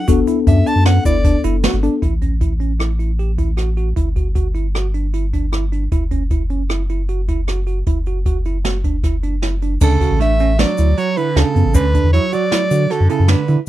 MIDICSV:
0, 0, Header, 1, 7, 480
1, 0, Start_track
1, 0, Key_signature, 2, "minor"
1, 0, Tempo, 388601
1, 101, Time_signature, 5, 2, 24, 8
1, 16904, End_track
2, 0, Start_track
2, 0, Title_t, "Soprano saxophone"
2, 0, Program_c, 0, 64
2, 590, Note_on_c, 0, 76, 93
2, 833, Note_on_c, 0, 81, 109
2, 852, Note_off_c, 0, 76, 0
2, 1053, Note_off_c, 0, 81, 0
2, 1060, Note_on_c, 0, 78, 95
2, 1281, Note_off_c, 0, 78, 0
2, 1308, Note_on_c, 0, 74, 93
2, 1748, Note_off_c, 0, 74, 0
2, 12149, Note_on_c, 0, 69, 97
2, 12583, Note_off_c, 0, 69, 0
2, 12617, Note_on_c, 0, 76, 91
2, 13056, Note_off_c, 0, 76, 0
2, 13093, Note_on_c, 0, 74, 84
2, 13565, Note_on_c, 0, 73, 89
2, 13584, Note_off_c, 0, 74, 0
2, 13798, Note_on_c, 0, 71, 83
2, 13816, Note_off_c, 0, 73, 0
2, 14048, Note_on_c, 0, 69, 91
2, 14067, Note_off_c, 0, 71, 0
2, 14511, Note_off_c, 0, 69, 0
2, 14518, Note_on_c, 0, 71, 95
2, 14961, Note_off_c, 0, 71, 0
2, 14981, Note_on_c, 0, 73, 92
2, 15231, Note_on_c, 0, 74, 110
2, 15250, Note_off_c, 0, 73, 0
2, 15951, Note_on_c, 0, 69, 85
2, 15970, Note_off_c, 0, 74, 0
2, 16176, Note_off_c, 0, 69, 0
2, 16184, Note_on_c, 0, 69, 76
2, 16420, Note_on_c, 0, 71, 74
2, 16438, Note_off_c, 0, 69, 0
2, 16779, Note_off_c, 0, 71, 0
2, 16904, End_track
3, 0, Start_track
3, 0, Title_t, "Tine electric piano"
3, 0, Program_c, 1, 4
3, 96, Note_on_c, 1, 66, 91
3, 235, Note_off_c, 1, 66, 0
3, 339, Note_on_c, 1, 64, 73
3, 477, Note_off_c, 1, 64, 0
3, 582, Note_on_c, 1, 62, 83
3, 719, Note_off_c, 1, 62, 0
3, 821, Note_on_c, 1, 62, 81
3, 957, Note_off_c, 1, 62, 0
3, 1064, Note_on_c, 1, 59, 82
3, 1200, Note_off_c, 1, 59, 0
3, 1304, Note_on_c, 1, 64, 73
3, 1440, Note_off_c, 1, 64, 0
3, 1543, Note_on_c, 1, 62, 85
3, 1678, Note_off_c, 1, 62, 0
3, 1783, Note_on_c, 1, 64, 82
3, 1919, Note_off_c, 1, 64, 0
3, 2024, Note_on_c, 1, 66, 83
3, 2159, Note_off_c, 1, 66, 0
3, 2261, Note_on_c, 1, 62, 80
3, 2397, Note_off_c, 1, 62, 0
3, 2497, Note_on_c, 1, 64, 63
3, 2634, Note_off_c, 1, 64, 0
3, 2740, Note_on_c, 1, 61, 45
3, 2877, Note_off_c, 1, 61, 0
3, 2977, Note_on_c, 1, 64, 57
3, 3115, Note_off_c, 1, 64, 0
3, 3214, Note_on_c, 1, 61, 56
3, 3353, Note_off_c, 1, 61, 0
3, 3454, Note_on_c, 1, 64, 57
3, 3593, Note_off_c, 1, 64, 0
3, 3695, Note_on_c, 1, 64, 46
3, 3834, Note_off_c, 1, 64, 0
3, 3944, Note_on_c, 1, 67, 57
3, 4081, Note_off_c, 1, 67, 0
3, 4181, Note_on_c, 1, 64, 64
3, 4318, Note_off_c, 1, 64, 0
3, 4413, Note_on_c, 1, 66, 60
3, 4553, Note_off_c, 1, 66, 0
3, 4660, Note_on_c, 1, 66, 57
3, 4799, Note_off_c, 1, 66, 0
3, 4896, Note_on_c, 1, 64, 70
3, 5036, Note_off_c, 1, 64, 0
3, 5139, Note_on_c, 1, 66, 46
3, 5278, Note_off_c, 1, 66, 0
3, 5376, Note_on_c, 1, 66, 58
3, 5516, Note_off_c, 1, 66, 0
3, 5614, Note_on_c, 1, 64, 54
3, 5756, Note_off_c, 1, 64, 0
3, 5865, Note_on_c, 1, 66, 65
3, 6003, Note_off_c, 1, 66, 0
3, 6105, Note_on_c, 1, 62, 52
3, 6244, Note_off_c, 1, 62, 0
3, 6347, Note_on_c, 1, 64, 60
3, 6486, Note_off_c, 1, 64, 0
3, 6591, Note_on_c, 1, 62, 59
3, 6728, Note_off_c, 1, 62, 0
3, 6827, Note_on_c, 1, 64, 67
3, 6966, Note_off_c, 1, 64, 0
3, 7069, Note_on_c, 1, 62, 50
3, 7208, Note_off_c, 1, 62, 0
3, 7314, Note_on_c, 1, 64, 72
3, 7452, Note_off_c, 1, 64, 0
3, 7551, Note_on_c, 1, 61, 58
3, 7690, Note_off_c, 1, 61, 0
3, 7794, Note_on_c, 1, 64, 58
3, 7932, Note_off_c, 1, 64, 0
3, 8034, Note_on_c, 1, 61, 62
3, 8172, Note_off_c, 1, 61, 0
3, 8279, Note_on_c, 1, 64, 66
3, 8416, Note_off_c, 1, 64, 0
3, 8522, Note_on_c, 1, 64, 55
3, 8659, Note_off_c, 1, 64, 0
3, 8757, Note_on_c, 1, 66, 58
3, 8896, Note_off_c, 1, 66, 0
3, 9000, Note_on_c, 1, 64, 64
3, 9138, Note_off_c, 1, 64, 0
3, 9238, Note_on_c, 1, 66, 60
3, 9376, Note_off_c, 1, 66, 0
3, 9472, Note_on_c, 1, 66, 50
3, 9613, Note_off_c, 1, 66, 0
3, 9722, Note_on_c, 1, 64, 67
3, 9860, Note_off_c, 1, 64, 0
3, 9969, Note_on_c, 1, 66, 53
3, 10105, Note_off_c, 1, 66, 0
3, 10204, Note_on_c, 1, 66, 62
3, 10342, Note_off_c, 1, 66, 0
3, 10447, Note_on_c, 1, 64, 62
3, 10584, Note_off_c, 1, 64, 0
3, 10685, Note_on_c, 1, 66, 68
3, 10823, Note_off_c, 1, 66, 0
3, 10925, Note_on_c, 1, 62, 60
3, 11063, Note_off_c, 1, 62, 0
3, 11168, Note_on_c, 1, 64, 63
3, 11305, Note_off_c, 1, 64, 0
3, 11405, Note_on_c, 1, 62, 61
3, 11542, Note_off_c, 1, 62, 0
3, 11648, Note_on_c, 1, 64, 63
3, 11785, Note_off_c, 1, 64, 0
3, 11888, Note_on_c, 1, 62, 58
3, 12024, Note_off_c, 1, 62, 0
3, 12125, Note_on_c, 1, 62, 88
3, 12262, Note_off_c, 1, 62, 0
3, 12365, Note_on_c, 1, 66, 71
3, 12502, Note_off_c, 1, 66, 0
3, 12607, Note_on_c, 1, 62, 76
3, 12743, Note_off_c, 1, 62, 0
3, 12851, Note_on_c, 1, 61, 80
3, 12986, Note_off_c, 1, 61, 0
3, 13087, Note_on_c, 1, 62, 72
3, 13223, Note_off_c, 1, 62, 0
3, 13321, Note_on_c, 1, 64, 62
3, 13458, Note_off_c, 1, 64, 0
3, 13558, Note_on_c, 1, 66, 74
3, 13696, Note_off_c, 1, 66, 0
3, 13801, Note_on_c, 1, 64, 76
3, 13938, Note_off_c, 1, 64, 0
3, 14039, Note_on_c, 1, 62, 78
3, 14176, Note_off_c, 1, 62, 0
3, 14268, Note_on_c, 1, 59, 63
3, 14407, Note_off_c, 1, 59, 0
3, 14507, Note_on_c, 1, 61, 89
3, 14647, Note_off_c, 1, 61, 0
3, 14759, Note_on_c, 1, 62, 75
3, 14895, Note_off_c, 1, 62, 0
3, 14994, Note_on_c, 1, 64, 75
3, 15131, Note_off_c, 1, 64, 0
3, 15228, Note_on_c, 1, 66, 82
3, 15366, Note_off_c, 1, 66, 0
3, 15459, Note_on_c, 1, 64, 78
3, 15599, Note_off_c, 1, 64, 0
3, 15701, Note_on_c, 1, 66, 67
3, 15840, Note_off_c, 1, 66, 0
3, 15937, Note_on_c, 1, 66, 72
3, 16077, Note_off_c, 1, 66, 0
3, 16176, Note_on_c, 1, 64, 70
3, 16315, Note_off_c, 1, 64, 0
3, 16422, Note_on_c, 1, 62, 86
3, 16559, Note_off_c, 1, 62, 0
3, 16658, Note_on_c, 1, 64, 75
3, 16796, Note_off_c, 1, 64, 0
3, 16904, End_track
4, 0, Start_track
4, 0, Title_t, "Tine electric piano"
4, 0, Program_c, 2, 4
4, 104, Note_on_c, 2, 59, 83
4, 109, Note_on_c, 2, 62, 74
4, 115, Note_on_c, 2, 69, 85
4, 2213, Note_off_c, 2, 59, 0
4, 2215, Note_off_c, 2, 62, 0
4, 2219, Note_off_c, 2, 69, 0
4, 2262, Note_on_c, 2, 59, 51
4, 2263, Note_on_c, 2, 62, 50
4, 2265, Note_on_c, 2, 69, 59
4, 2498, Note_off_c, 2, 59, 0
4, 2499, Note_off_c, 2, 62, 0
4, 2500, Note_off_c, 2, 69, 0
4, 16904, End_track
5, 0, Start_track
5, 0, Title_t, "Clean electric guitar"
5, 0, Program_c, 3, 27
5, 12132, Note_on_c, 3, 49, 76
5, 12574, Note_off_c, 3, 49, 0
5, 12597, Note_on_c, 3, 57, 83
5, 13045, Note_off_c, 3, 57, 0
5, 13081, Note_on_c, 3, 54, 75
5, 13526, Note_off_c, 3, 54, 0
5, 13557, Note_on_c, 3, 54, 79
5, 13804, Note_off_c, 3, 54, 0
5, 13804, Note_on_c, 3, 50, 74
5, 14032, Note_on_c, 3, 49, 63
5, 14040, Note_off_c, 3, 50, 0
5, 14512, Note_off_c, 3, 49, 0
5, 14519, Note_on_c, 3, 50, 75
5, 14961, Note_off_c, 3, 50, 0
5, 15001, Note_on_c, 3, 54, 70
5, 15219, Note_off_c, 3, 54, 0
5, 15247, Note_on_c, 3, 54, 71
5, 15954, Note_off_c, 3, 54, 0
5, 15954, Note_on_c, 3, 50, 70
5, 16188, Note_off_c, 3, 50, 0
5, 16189, Note_on_c, 3, 49, 70
5, 16420, Note_off_c, 3, 49, 0
5, 16420, Note_on_c, 3, 50, 57
5, 16779, Note_off_c, 3, 50, 0
5, 16904, End_track
6, 0, Start_track
6, 0, Title_t, "Sub bass"
6, 0, Program_c, 4, 38
6, 106, Note_on_c, 4, 30, 127
6, 297, Note_off_c, 4, 30, 0
6, 583, Note_on_c, 4, 42, 108
6, 774, Note_off_c, 4, 42, 0
6, 933, Note_on_c, 4, 42, 79
6, 1224, Note_off_c, 4, 42, 0
6, 1300, Note_on_c, 4, 30, 98
6, 1685, Note_off_c, 4, 30, 0
6, 1779, Note_on_c, 4, 30, 92
6, 2067, Note_off_c, 4, 30, 0
6, 2141, Note_on_c, 4, 31, 103
6, 2332, Note_off_c, 4, 31, 0
6, 2501, Note_on_c, 4, 33, 76
6, 4856, Note_off_c, 4, 33, 0
6, 4904, Note_on_c, 4, 31, 77
6, 7264, Note_off_c, 4, 31, 0
6, 7311, Note_on_c, 4, 30, 78
6, 9672, Note_off_c, 4, 30, 0
6, 9721, Note_on_c, 4, 30, 78
6, 12076, Note_off_c, 4, 30, 0
6, 12122, Note_on_c, 4, 38, 104
6, 12316, Note_off_c, 4, 38, 0
6, 12483, Note_on_c, 4, 33, 94
6, 13158, Note_off_c, 4, 33, 0
6, 13324, Note_on_c, 4, 38, 96
6, 13515, Note_off_c, 4, 38, 0
6, 14032, Note_on_c, 4, 38, 97
6, 14130, Note_off_c, 4, 38, 0
6, 14273, Note_on_c, 4, 42, 88
6, 14371, Note_off_c, 4, 42, 0
6, 14394, Note_on_c, 4, 33, 81
6, 14516, Note_on_c, 4, 38, 105
6, 14535, Note_off_c, 4, 33, 0
6, 14804, Note_off_c, 4, 38, 0
6, 14868, Note_on_c, 4, 40, 86
6, 15062, Note_off_c, 4, 40, 0
6, 15699, Note_on_c, 4, 50, 87
6, 15895, Note_off_c, 4, 50, 0
6, 16062, Note_on_c, 4, 42, 82
6, 16160, Note_off_c, 4, 42, 0
6, 16300, Note_on_c, 4, 42, 91
6, 16494, Note_off_c, 4, 42, 0
6, 16661, Note_on_c, 4, 50, 93
6, 16757, Note_off_c, 4, 50, 0
6, 16904, End_track
7, 0, Start_track
7, 0, Title_t, "Drums"
7, 99, Note_on_c, 9, 82, 52
7, 103, Note_on_c, 9, 36, 107
7, 103, Note_on_c, 9, 42, 86
7, 222, Note_off_c, 9, 82, 0
7, 226, Note_off_c, 9, 36, 0
7, 226, Note_off_c, 9, 42, 0
7, 339, Note_on_c, 9, 82, 19
7, 341, Note_on_c, 9, 42, 61
7, 462, Note_off_c, 9, 82, 0
7, 464, Note_off_c, 9, 42, 0
7, 579, Note_on_c, 9, 36, 93
7, 579, Note_on_c, 9, 42, 80
7, 702, Note_off_c, 9, 42, 0
7, 703, Note_off_c, 9, 36, 0
7, 824, Note_on_c, 9, 42, 56
7, 824, Note_on_c, 9, 82, 19
7, 947, Note_off_c, 9, 42, 0
7, 948, Note_off_c, 9, 82, 0
7, 1055, Note_on_c, 9, 38, 110
7, 1055, Note_on_c, 9, 42, 88
7, 1179, Note_off_c, 9, 38, 0
7, 1179, Note_off_c, 9, 42, 0
7, 1298, Note_on_c, 9, 36, 78
7, 1298, Note_on_c, 9, 42, 65
7, 1303, Note_on_c, 9, 82, 44
7, 1422, Note_off_c, 9, 36, 0
7, 1422, Note_off_c, 9, 42, 0
7, 1426, Note_off_c, 9, 82, 0
7, 1536, Note_on_c, 9, 42, 79
7, 1537, Note_on_c, 9, 36, 94
7, 1659, Note_off_c, 9, 42, 0
7, 1661, Note_off_c, 9, 36, 0
7, 1776, Note_on_c, 9, 42, 67
7, 1781, Note_on_c, 9, 82, 19
7, 1900, Note_off_c, 9, 42, 0
7, 1905, Note_off_c, 9, 82, 0
7, 2020, Note_on_c, 9, 38, 104
7, 2020, Note_on_c, 9, 42, 71
7, 2020, Note_on_c, 9, 82, 18
7, 2143, Note_off_c, 9, 38, 0
7, 2143, Note_off_c, 9, 42, 0
7, 2144, Note_off_c, 9, 82, 0
7, 2262, Note_on_c, 9, 42, 60
7, 2385, Note_off_c, 9, 42, 0
7, 2499, Note_on_c, 9, 36, 86
7, 2500, Note_on_c, 9, 42, 65
7, 2622, Note_off_c, 9, 36, 0
7, 2624, Note_off_c, 9, 42, 0
7, 2735, Note_on_c, 9, 42, 46
7, 2737, Note_on_c, 9, 36, 53
7, 2859, Note_off_c, 9, 42, 0
7, 2861, Note_off_c, 9, 36, 0
7, 2976, Note_on_c, 9, 42, 62
7, 2979, Note_on_c, 9, 36, 74
7, 3099, Note_off_c, 9, 42, 0
7, 3102, Note_off_c, 9, 36, 0
7, 3218, Note_on_c, 9, 42, 44
7, 3342, Note_off_c, 9, 42, 0
7, 3458, Note_on_c, 9, 37, 92
7, 3458, Note_on_c, 9, 42, 64
7, 3582, Note_off_c, 9, 37, 0
7, 3582, Note_off_c, 9, 42, 0
7, 3702, Note_on_c, 9, 42, 46
7, 3825, Note_off_c, 9, 42, 0
7, 3942, Note_on_c, 9, 42, 51
7, 4065, Note_off_c, 9, 42, 0
7, 4177, Note_on_c, 9, 36, 55
7, 4178, Note_on_c, 9, 42, 46
7, 4301, Note_off_c, 9, 36, 0
7, 4301, Note_off_c, 9, 42, 0
7, 4414, Note_on_c, 9, 37, 70
7, 4414, Note_on_c, 9, 42, 60
7, 4538, Note_off_c, 9, 37, 0
7, 4538, Note_off_c, 9, 42, 0
7, 4656, Note_on_c, 9, 42, 45
7, 4780, Note_off_c, 9, 42, 0
7, 4897, Note_on_c, 9, 42, 60
7, 4900, Note_on_c, 9, 36, 78
7, 5021, Note_off_c, 9, 42, 0
7, 5023, Note_off_c, 9, 36, 0
7, 5140, Note_on_c, 9, 36, 61
7, 5140, Note_on_c, 9, 42, 43
7, 5263, Note_off_c, 9, 42, 0
7, 5264, Note_off_c, 9, 36, 0
7, 5376, Note_on_c, 9, 42, 61
7, 5380, Note_on_c, 9, 36, 71
7, 5500, Note_off_c, 9, 42, 0
7, 5504, Note_off_c, 9, 36, 0
7, 5620, Note_on_c, 9, 42, 46
7, 5744, Note_off_c, 9, 42, 0
7, 5866, Note_on_c, 9, 37, 89
7, 5866, Note_on_c, 9, 42, 67
7, 5989, Note_off_c, 9, 37, 0
7, 5989, Note_off_c, 9, 42, 0
7, 6101, Note_on_c, 9, 42, 50
7, 6225, Note_off_c, 9, 42, 0
7, 6343, Note_on_c, 9, 42, 67
7, 6467, Note_off_c, 9, 42, 0
7, 6587, Note_on_c, 9, 42, 52
7, 6588, Note_on_c, 9, 36, 50
7, 6710, Note_off_c, 9, 42, 0
7, 6711, Note_off_c, 9, 36, 0
7, 6825, Note_on_c, 9, 37, 86
7, 6825, Note_on_c, 9, 42, 60
7, 6949, Note_off_c, 9, 37, 0
7, 6949, Note_off_c, 9, 42, 0
7, 7072, Note_on_c, 9, 42, 47
7, 7195, Note_off_c, 9, 42, 0
7, 7307, Note_on_c, 9, 42, 65
7, 7310, Note_on_c, 9, 36, 85
7, 7430, Note_off_c, 9, 42, 0
7, 7434, Note_off_c, 9, 36, 0
7, 7546, Note_on_c, 9, 42, 51
7, 7550, Note_on_c, 9, 36, 53
7, 7670, Note_off_c, 9, 42, 0
7, 7673, Note_off_c, 9, 36, 0
7, 7786, Note_on_c, 9, 42, 59
7, 7790, Note_on_c, 9, 36, 75
7, 7909, Note_off_c, 9, 42, 0
7, 7914, Note_off_c, 9, 36, 0
7, 8029, Note_on_c, 9, 42, 39
7, 8152, Note_off_c, 9, 42, 0
7, 8271, Note_on_c, 9, 37, 94
7, 8271, Note_on_c, 9, 42, 64
7, 8395, Note_off_c, 9, 37, 0
7, 8395, Note_off_c, 9, 42, 0
7, 8515, Note_on_c, 9, 42, 43
7, 8638, Note_off_c, 9, 42, 0
7, 8751, Note_on_c, 9, 42, 50
7, 8875, Note_off_c, 9, 42, 0
7, 8996, Note_on_c, 9, 36, 51
7, 8996, Note_on_c, 9, 42, 47
7, 9119, Note_off_c, 9, 42, 0
7, 9120, Note_off_c, 9, 36, 0
7, 9236, Note_on_c, 9, 37, 83
7, 9236, Note_on_c, 9, 42, 57
7, 9359, Note_off_c, 9, 37, 0
7, 9359, Note_off_c, 9, 42, 0
7, 9474, Note_on_c, 9, 42, 46
7, 9597, Note_off_c, 9, 42, 0
7, 9714, Note_on_c, 9, 42, 64
7, 9718, Note_on_c, 9, 36, 86
7, 9837, Note_off_c, 9, 42, 0
7, 9842, Note_off_c, 9, 36, 0
7, 9955, Note_on_c, 9, 42, 43
7, 10078, Note_off_c, 9, 42, 0
7, 10197, Note_on_c, 9, 42, 60
7, 10199, Note_on_c, 9, 36, 80
7, 10320, Note_off_c, 9, 42, 0
7, 10323, Note_off_c, 9, 36, 0
7, 10438, Note_on_c, 9, 42, 47
7, 10562, Note_off_c, 9, 42, 0
7, 10680, Note_on_c, 9, 38, 88
7, 10680, Note_on_c, 9, 42, 75
7, 10803, Note_off_c, 9, 38, 0
7, 10803, Note_off_c, 9, 42, 0
7, 10920, Note_on_c, 9, 42, 50
7, 10921, Note_on_c, 9, 36, 63
7, 11043, Note_off_c, 9, 42, 0
7, 11044, Note_off_c, 9, 36, 0
7, 11157, Note_on_c, 9, 38, 23
7, 11157, Note_on_c, 9, 42, 67
7, 11161, Note_on_c, 9, 36, 81
7, 11280, Note_off_c, 9, 38, 0
7, 11280, Note_off_c, 9, 42, 0
7, 11284, Note_off_c, 9, 36, 0
7, 11401, Note_on_c, 9, 42, 53
7, 11524, Note_off_c, 9, 42, 0
7, 11639, Note_on_c, 9, 38, 78
7, 11639, Note_on_c, 9, 42, 60
7, 11762, Note_off_c, 9, 38, 0
7, 11762, Note_off_c, 9, 42, 0
7, 11882, Note_on_c, 9, 42, 50
7, 12005, Note_off_c, 9, 42, 0
7, 12116, Note_on_c, 9, 49, 84
7, 12116, Note_on_c, 9, 82, 38
7, 12120, Note_on_c, 9, 36, 91
7, 12240, Note_off_c, 9, 49, 0
7, 12240, Note_off_c, 9, 82, 0
7, 12243, Note_off_c, 9, 36, 0
7, 12360, Note_on_c, 9, 36, 76
7, 12362, Note_on_c, 9, 42, 56
7, 12484, Note_off_c, 9, 36, 0
7, 12485, Note_off_c, 9, 42, 0
7, 12601, Note_on_c, 9, 38, 28
7, 12601, Note_on_c, 9, 42, 73
7, 12724, Note_off_c, 9, 38, 0
7, 12724, Note_off_c, 9, 42, 0
7, 12837, Note_on_c, 9, 82, 14
7, 12841, Note_on_c, 9, 42, 53
7, 12961, Note_off_c, 9, 82, 0
7, 12965, Note_off_c, 9, 42, 0
7, 13080, Note_on_c, 9, 38, 108
7, 13080, Note_on_c, 9, 42, 84
7, 13203, Note_off_c, 9, 38, 0
7, 13203, Note_off_c, 9, 42, 0
7, 13312, Note_on_c, 9, 82, 38
7, 13320, Note_on_c, 9, 42, 56
7, 13435, Note_off_c, 9, 82, 0
7, 13444, Note_off_c, 9, 42, 0
7, 13557, Note_on_c, 9, 42, 76
7, 13681, Note_off_c, 9, 42, 0
7, 13796, Note_on_c, 9, 42, 56
7, 13919, Note_off_c, 9, 42, 0
7, 14038, Note_on_c, 9, 38, 88
7, 14038, Note_on_c, 9, 42, 76
7, 14161, Note_off_c, 9, 38, 0
7, 14161, Note_off_c, 9, 42, 0
7, 14276, Note_on_c, 9, 42, 68
7, 14400, Note_off_c, 9, 42, 0
7, 14505, Note_on_c, 9, 82, 65
7, 14510, Note_on_c, 9, 42, 91
7, 14511, Note_on_c, 9, 36, 106
7, 14628, Note_off_c, 9, 82, 0
7, 14634, Note_off_c, 9, 42, 0
7, 14635, Note_off_c, 9, 36, 0
7, 14750, Note_on_c, 9, 36, 74
7, 14752, Note_on_c, 9, 42, 66
7, 14874, Note_off_c, 9, 36, 0
7, 14876, Note_off_c, 9, 42, 0
7, 14988, Note_on_c, 9, 42, 77
7, 15111, Note_off_c, 9, 42, 0
7, 15221, Note_on_c, 9, 82, 19
7, 15228, Note_on_c, 9, 42, 59
7, 15345, Note_off_c, 9, 82, 0
7, 15352, Note_off_c, 9, 42, 0
7, 15461, Note_on_c, 9, 38, 105
7, 15461, Note_on_c, 9, 42, 92
7, 15584, Note_off_c, 9, 38, 0
7, 15584, Note_off_c, 9, 42, 0
7, 15698, Note_on_c, 9, 82, 44
7, 15700, Note_on_c, 9, 42, 61
7, 15822, Note_off_c, 9, 82, 0
7, 15823, Note_off_c, 9, 42, 0
7, 15939, Note_on_c, 9, 38, 31
7, 15939, Note_on_c, 9, 42, 64
7, 16062, Note_off_c, 9, 38, 0
7, 16062, Note_off_c, 9, 42, 0
7, 16175, Note_on_c, 9, 42, 57
7, 16298, Note_off_c, 9, 42, 0
7, 16405, Note_on_c, 9, 38, 101
7, 16405, Note_on_c, 9, 42, 75
7, 16528, Note_off_c, 9, 38, 0
7, 16528, Note_off_c, 9, 42, 0
7, 16647, Note_on_c, 9, 42, 53
7, 16771, Note_off_c, 9, 42, 0
7, 16904, End_track
0, 0, End_of_file